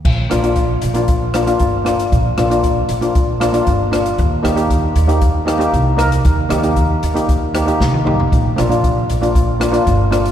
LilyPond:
<<
  \new Staff \with { instrumentName = "Steel pan" } { \time 4/4 \key bes \mixolydian \tempo 4 = 116 r8 <bes d' f'>16 <bes d' f'>8 r8 <bes d' f'>8 r16 <bes d' f'>16 <bes d' f'>8 r16 <bes d' f'>8 | r8 <bes d' f'>16 <bes d' f'>8 r8 <bes d' f'>8 r16 <bes d' f'>16 <bes d' f'>8 r16 <bes d' f'>8 | r8 <bes ees' g'>16 <bes ees' g'>8 r8 <bes ees' g'>8 r16 <bes ees' g'>16 <bes ees' g'>8 r16 <bes ees' bes'>8 | r8 <bes ees' g'>16 <bes ees' g'>8 r8 <bes ees' g'>8 r16 <bes ees' g'>16 <bes ees' g'>8 r16 <bes ees' g'>8 |
r8 <bes d' f'>16 <bes d' f'>8 r8 <bes d' f'>8 r16 <bes d' f'>16 <bes d' f'>8 r16 <bes d' f'>8 | }
  \new Staff \with { instrumentName = "Upright bass" } { \clef bass \time 4/4 \key bes \mixolydian bes,,8 bes,,4 bes,,4. g,,4 | bes,,8 bes,,4 bes,,4. g,,4 | ees,8 ees,4 ees,4. c,4 | ees,8 ees,4 ees,4. c,4 |
bes,,8 bes,,4 bes,,4. g,,4 | }
  \new DrumStaff \with { instrumentName = "Drums" } \drummode { \time 4/4 <cymc bd>8 <hh ss>16 hh16 <hh bd>8 hh16 hh16 <hh bd>8 <hh ss>16 hh16 <hh bd>8 <hh ss>16 hh16 | <hh bd>8 <hh ss>16 hh16 <hh bd>8 hh16 hh16 <hh bd>8 <hh ss>16 hh16 <hh bd>8 <hh ss>16 hh16 | <hh bd>8 <hh ss>16 hh16 <hh bd>8 hh16 hh16 <hh bd>8 <hh ss>16 hh16 <hh bd>8 <hh ss>16 hh16 | <hh bd>8 <hh ss>16 hh16 <hh bd>8 hh16 hh16 <hh bd>8 <hh ss>16 hh16 <bd sn>16 tommh16 toml16 tomfh16 |
<hh bd>8 <hh ss>16 hh16 <hh bd>8 hh16 hh16 <hh bd>8 <hh ss>16 hh16 <hh bd>8 <hh ss>16 hh16 | }
>>